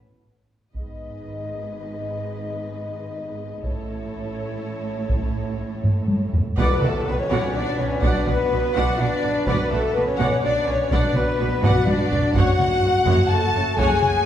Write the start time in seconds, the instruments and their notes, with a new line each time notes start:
0.73 double bass section G#1, cello section G#2, french horn section B3 D#4, woodwind section B3 D#4 G#4 D#5, viola section G#4, violin section B4 D#5, taiko
3.63 double bass section A1, cello section A2, woodwind section A3 E4 A4 C#5, french horn section C#4 E4, viola section E4, violin section A4 C#5, taiko
5.09 taiko
5.84 taiko low-mid
6.08 taiko high
6.33 taiko low
6.56 double bass section B1, cello section B2, woodwind section B3 F#4 B4, french horn section B3, violin section B4, flute B4, viola section D5 F#5, taiko, tam-tam
6.82 double bass section B1, cello section B2, french horn section A3, violin section A4, flute A4, viola section D5 F#5, taiko mid
7.06 double bass section B1, cello section B2, french horn section B3, violin section B4, flute B4, viola section B4 D5
7.18 french horn section C#4, violin section C#5, flute C#5
7.31 double bass section B1, cello section B2, viola section D5 F#5
7.54 double bass section B1, cello section B2, french horn section D4, violin section D5, flute D5, viola section D5 F#5
7.78 double bass section B1, cello section B2, french horn section C#4, viola section B4 D5, violin section C#5, flute C#5
8.02 double bass section B1, cello section B2, french horn section D4, viola section D5 F#5, flute D5, violin section D5, taiko
8.27 double bass section B1, cello section B2, french horn section B3, violin section B4, flute B4, viola section D5 F#5, taiko mid
8.51 double bass section B1, cello section B2, viola section B4 D5
8.75 double bass section B1, cello section B2, french horn section F#4, viola section D5 F#5, violin section F#5, flute F#5
8.99 double bass section B1, cello section B2, french horn section D4, violin section D5, viola section D5 F#5, flute D5
9.23 double bass section B1, cello section B2, viola section B4 D5
9.47 double bass section B1, cello section B2, french horn section B3, violin section B4, flute B4, viola section D5 F#5, taiko
9.69 double bass section B1, cello section B2, french horn section A3, violin section A4, flute A4, viola section D5 F#5, taiko mid
9.92 double bass section B1, cello section B2, french horn section B3, violin section B4, flute B4, viola section B4 D5
10.04 french horn section C#4, violin section C#5, flute C#5
10.19 double bass section B1, cello section B2, viola section D5 F#5
10.42 double bass section B1, cello section B2, french horn section D4, violin section D5, flute D5, viola section D5 F#5
10.65 double bass section B1, cello section B2, french horn section C#4, viola section B4 D5, violin section C#5, flute C#5, taiko rim
10.90 double bass section B1, cello section B2, woodwind section B3 D4 F#4 B4, french horn section D4, violin section D5, flute D5, viola section D5 F#5, taiko
11.14 double bass section B1, cello section B2, french horn section B3, violin section B4, flute B4, viola section D5 F#5, taiko mid
11.39 double bass section B1, cello section B2, viola section B4 D5
11.63 double bass section B1, cello section B2, french horn section F#4, viola section D5 F#5, violin section F#5, flute F#5, taiko low-mid
11.87 double bass section B1, cello section B2, french horn section D4, flute D5, violin section D5, viola section D5 F#5, taiko high
12.11 double bass section B1, cello section B2, viola section B4 D5, taiko low
12.34 double bass section F#1, cello section F#2, woodwind section A3 F#4, french horn section F#4, viola section C#5 F#5, violin section F#5, flute F#5, taiko
12.58 double bass section F#1, cello section F#2, viola section C#5 F#5, taiko mid
12.82 double bass section F#1, cello section F#2, viola section A4 C#5
13.06 double bass section F#1, cello section F#2, viola section C#5 F#5
13.30 double bass section F#1, cello section F#2, french horn section A4, viola section C#5 F#5, violin section A5, flute A5
13.54 double bass section F#1, cello section F#2, viola section A4 C#5
13.77 double bass section F#1, cello section F#2, french horn section G#4, viola section C#5 F#5, violin section G#5, flute G#5, taiko
14.02 double bass section F#1, cello section F#2, viola section C#5 F#5, taiko mid